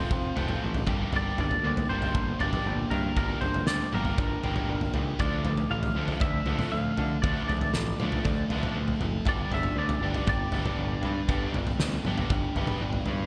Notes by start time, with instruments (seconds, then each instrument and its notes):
Already playing: overdriven electric guitar F3 C4, clean electric guitar C5
0.11 picked electric bass F1, overdriven electric guitar A3 C4 F4, kick, floor tom
0.36 picked electric bass F1, overdriven electric guitar A3 C4 F4 A4, floor tom
0.48 floor tom, mid tom
0.61 picked electric bass A1, overdriven electric guitar A3 C4
0.74 floor tom
0.87 picked electric bass G1, overdriven electric guitar G3 A#3 D4 G4, kick, floor tom
1.12 picked electric bass G1, overdriven electric guitar G3 A#3 D4 G4, floor tom
1.16 clean electric guitar D5
1.37 picked electric bass G1, overdriven electric guitar A#3 D4, clean electric guitar D5, floor tom
1.51 floor tom
1.63 picked electric bass D2, overdriven electric guitar G3 A#3 D4, clean electric guitar D5
1.77 floor tom
1.89 picked electric bass G1, overdriven electric guitar A#3 D4 G4, clean electric guitar C5
2.02 floor tom
2.15 picked electric bass G1, overdriven electric guitar A#3 D4, kick, floor tom
2.39 picked electric bass G1, overdriven electric guitar A#3 D4 G4, clean electric guitar D5, floor tom
2.53 floor tom, mid tom
2.66 picked electric bass G1, overdriven electric guitar A#3 D4
2.90 picked electric bass G2, overdriven electric guitar A#3 D4 G4, clean electric guitar A#4, floor tom
3.16 picked electric bass G1, overdriven electric guitar G3 A#3 D4 G4, clean electric guitar A#4, kick, floor tom
3.41 picked electric bass G1, overdriven electric guitar A#3 D4, clean electric guitar C5, floor tom
3.54 floor tom
3.67 picked electric bass D2, overdriven electric guitar G3 A#3 D4, clean electric guitar D5, snare
3.93 picked electric bass G1, overdriven electric guitar A#3 D4 G4, clean electric guitar A#4, mid tom
4.05 floor tom
4.18 picked electric bass G1, overdriven electric guitar A#3 D4, kick, floor tom
4.43 picked electric bass G1, overdriven electric guitar A#3 D4 G4, floor tom
4.56 floor tom, mid tom
4.69 picked electric bass G1, overdriven electric guitar A#3 D4
4.81 floor tom
4.94 picked electric bass C#2, overdriven electric guitar A#3 D4 G4, floor tom
5.19 picked electric bass D2, overdriven electric guitar D3 F3 A3 D4, clean electric guitar D5, kick, floor tom
5.44 picked electric bass D2, overdriven electric guitar F3 A3, floor tom
5.57 floor tom
5.70 picked electric bass A1, overdriven electric guitar F3 A3, clean electric guitar F5
5.83 floor tom
5.95 picked electric bass D2, overdriven electric guitar F3 A3 D4
6.08 floor tom
6.20 picked electric bass D2, overdriven electric guitar F3 A3 D4, clean electric guitar E5, kick, floor tom
6.46 picked electric bass D2, overdriven electric guitar F3 A3 D4 A4, floor tom
6.59 floor tom, mid tom
6.72 picked electric bass D2, overdriven electric guitar F3 A3, clean electric guitar F5
6.97 picked electric bass D3, overdriven electric guitar F3 A3 A4, floor tom
7.22 picked electric bass D2, overdriven electric guitar D3 F3 A3 D4, clean electric guitar D5, kick, floor tom
7.48 picked electric bass D2, overdriven electric guitar F3 A3, clean electric guitar D5, floor tom
7.61 floor tom
7.73 picked electric bass A1, overdriven electric guitar F3 A3, snare
7.99 picked electric bass D2, overdriven electric guitar F3 A3 D4, mid tom
8.12 floor tom
8.25 picked electric bass D2, overdriven electric guitar F3 A3 D4, kick, floor tom
8.49 picked electric bass D2, overdriven electric guitar F3 A3 D4 A4, floor tom
8.63 floor tom, mid tom
8.76 picked electric bass D2, overdriven electric guitar F3 A3
8.88 floor tom
9.01 picked electric bass F#1, overdriven electric guitar F3 A3 A4, floor tom
9.25 picked electric bass G1, overdriven electric guitar G3 B3 D4 G4, clean electric guitar D5, kick, floor tom
9.51 picked electric bass G1, overdriven electric guitar B3 D4, clean electric guitar E5, floor tom
9.63 floor tom
9.76 picked electric bass D2, overdriven electric guitar A3 B3 D4, clean electric guitar D5
9.89 floor tom
10.00 picked electric bass G1, overdriven electric guitar B3 D4 G4
10.14 floor tom
10.27 picked electric bass G1, overdriven electric guitar B3 D4 G4, clean electric guitar D5, kick, floor tom
10.51 picked electric bass G1, overdriven electric guitar B3 D4 G4 B4, floor tom
10.66 floor tom, mid tom
10.77 picked electric bass G1, overdriven electric guitar B3 D4
11.02 picked electric bass G2, overdriven electric guitar B3 D4 B4, floor tom
11.28 picked electric bass G1, overdriven electric guitar G3 B3 D4 G4, kick, floor tom
11.52 picked electric bass G1, overdriven electric guitar B3 D4, floor tom
11.67 floor tom
11.79 picked electric bass D2, overdriven electric guitar A3 B3 D4, snare
12.04 picked electric bass G1, overdriven electric guitar B3 D4 G4, mid tom
12.18 floor tom
12.30 picked electric bass G1, overdriven electric guitar B3 D4 G4, kick, floor tom
12.55 picked electric bass G1, overdriven electric guitar B3 D4 G4 B4, floor tom
12.67 floor tom, mid tom
12.81 picked electric bass G1, overdriven electric guitar B3 D4
12.93 floor tom
13.06 picked electric bass G2, overdriven electric guitar B3 D4 B4, floor tom